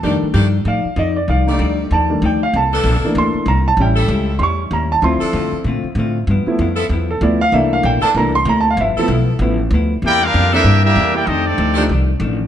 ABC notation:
X:1
M:4/4
L:1/8
Q:"Swing" 1/4=192
K:Cmix
V:1 name="Trumpet section"
z8 | z8 | z8 | z8 |
z8 | z8 | z8 | z8 |
[K:C] [E_Bdg] [DGBf]2 [DGBe]2 [DGBe]2 [EBdg] | [CGA_e] [CGAd]3 z4 |]
V:2 name="Grand piano"
a z3 f2 _e d | f3 z a2 g f | a3 z c'2 b a | g3 z [c'^c']2 b a |
c'3 z4 z | z4 z A d f | e f g a b c' (3b a f | e A z6 |
[K:C] z3 [E,_B,CDA] z4 | z3 [F,A,D_EG] z4 |]
V:3 name="Grand piano"
[_E,G,A,D] z6 z | z [G,A,D_E]3 z [_E,G,A,D] z2 | z3 [E,A,B,D]3 z2 | [G,^CE]8 |
[F,CE]8 | z [F,A,=B,E] z4 [F,A,B,E] z | [E,A,B,D]3 z [E,A,B,D] z3 | z [F,A,=B,E] z2 [F,A,B,E] z3 |
[K:C] z8 | z8 |]
V:4 name="Saxophone section"
[_E,A,DG] z [E,A,DG] z4 z | z [_E,A,Gd]3 z4 | z [E,B,DA]3 z4 | z [G,^CEA]3 z4 |
z [F,CDA]3 z4 | z3 [F,=B,EA] z4 | z3 [E,B,DA] z4 | z [F,=B,EA]3 z4 |
[K:C] z3 [E,_B,DA] z4 | z3 [_E,A,DG] z4 |]
V:5 name="Trombone section"
z8 | z8 | z8 | z8 |
z8 | z8 | z8 | z8 |
[K:C] [_B,EG] [G,B,F]2 [G,B,E]2 [G,B,E]2 [B,EG] | [A,C_E] [A,DE]3 z4 |]
V:6 name="Hollow-body jazz guitar"
[F,_EAd] z [F,EAd] z [F,EAd] z [F,EAd] z | [F,_EAd] z [F,EAd] z [F,EAd] z [F,EAd] z | [C,B,EA] z [C,B,EA] z [C,B,EA] z [C,B,EA] z | [A,,G,^CE] z [A,,G,CE] z [A,,G,CE] z [A,,G,CE] z |
[D,A,CF] z [D,A,CF] z [D,A,CF] z [D,A,CF] z | [G,,F,=B,E] z [G,,F,B,E] z [G,,F,B,E] z [G,,F,B,E] z | [C,B,EA] z [C,B,EA] z [C,B,EA] z [C,B,EA] z | [G,,F,=B,E] z [G,,F,B,E] z [G,,F,B,E] z [G,,F,B,E] z |
[K:C] [C,_B,EA] z [C,B,EA] z [C,B,EA] z [C,B,EA] z | [F,,_E,A,D] z [F,,E,A,D] z [F,,E,A,D] z [F,,E,A,D] z |]
V:7 name="Upright bass" clef=bass
F,, z G,,2 A,, z F,,2 | C,,2 D,,2 _E,,2 D,,2 | C,,2 B,,, z D,, z C,,2 | A,,,2 ^C,,2 E,,2 _E,,2 |
D,, z F,, z B,, z A,,2 | G,, z F,,2 E,,2 D,,2 | C,,2 B,,, z C,,2 D,,2 | G,,, z =B,,,2 A,,,2 D,,2 |
[K:C] E,,2 F,,2 G,,2 E,,2 | F,,2 D,,2 C,,2 A,,,2 |]